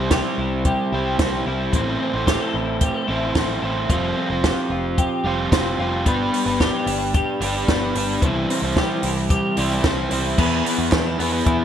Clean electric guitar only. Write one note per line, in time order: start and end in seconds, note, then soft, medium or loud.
0.00 1.73 G3 medium
0.00 1.19 C4 medium
0.00 0.11 G4 medium
0.11 0.65 G4 medium
0.39 0.92 E4 soft
0.66 1.79 G4 medium
0.92 1.46 E4 soft
1.19 1.72 C4 medium
1.47 2.53 E4 soft
1.73 2.00 C4 medium
2.00 3.35 C4 medium
2.27 2.40 G4 medium
2.40 2.81 A4 medium
2.54 3.07 E4 soft
2.81 2.94 G4 medium
2.94 3.95 A4 medium
3.08 3.61 E4 medium
3.35 4.16 C4 medium
3.62 3.95 E4 medium
3.90 6.06 F3 medium
4.17 5.52 C4 medium
4.44 4.98 G4 medium
4.71 5.24 F4 medium
4.98 6.60 G4 medium
5.25 5.78 F4 medium
5.53 6.05 C4 medium
5.79 6.12 F4 medium
6.06 6.32 B3 medium
6.33 7.68 B3 medium
6.60 7.14 G4 medium
6.87 7.41 D4 medium
7.14 8.76 G4 medium
7.42 7.95 D4 medium
7.69 8.28 B3 medium
7.96 8.28 D4 medium
8.23 10.96 E3 medium
8.50 9.83 C4 medium
8.77 9.29 G4 medium
9.04 9.57 E4 medium
9.30 10.44 G4 medium
9.58 9.71 D4 medium
9.71 10.10 E4 soft
9.85 10.38 C4 medium
10.11 10.92 E4 medium
10.39 10.64 B3 medium
10.65 11.18 B3 medium
10.93 11.06 D4 medium
11.06 11.45 E4 medium
11.19 11.65 B3 medium
11.47 11.65 E4 medium